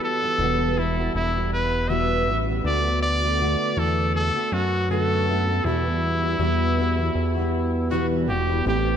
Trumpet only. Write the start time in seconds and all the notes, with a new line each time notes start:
0.04 A4
0.78 E4
1.15 E4
1.53 B4
1.89 E5
2.66 D5
3.02 D5
3.79 A4
4.15 A4
4.53 F#4
4.91 A4
5.65 E4
7.91 F#4
8.29 G4
8.68 G4